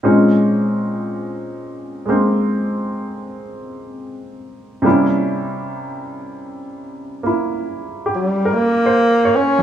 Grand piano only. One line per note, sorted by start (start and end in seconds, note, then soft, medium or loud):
0.03 4.84 A#2 soft
0.03 2.04 G#3 soft
0.03 2.08 C4 soft
0.03 4.84 C#4 soft
0.03 4.85 D#4 soft
2.06 4.85 G#3 soft
2.06 4.82 A#3 soft
2.10 4.87 C4 soft
4.82 9.63 C3 soft
4.82 9.63 G3 soft
4.82 7.22 A#3 soft
4.82 9.63 C#4 soft
4.86 7.25 E4 soft
7.23 9.63 A#3 soft
7.23 9.63 E4 soft
8.06 8.69 G4 soft
8.45 9.23 A#4 soft
8.86 9.50 C5 soft
9.25 9.63 C#5 soft
9.59 9.63 F2 soft